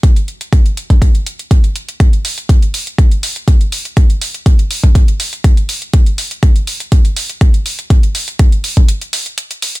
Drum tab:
HH |xxxxxxxxxxxxxxxx|xxoxxxoxxxoxxxox|xxoxxxoxxxoxxxox|xxoxxxoxxxoxxxox|
BD |o---o--oo---o---|o---o---o---o---|o---o--oo---o---|o---o---o---o---|

HH |xxoxxxoxxxoxxxox|
BD |o---o--o--------|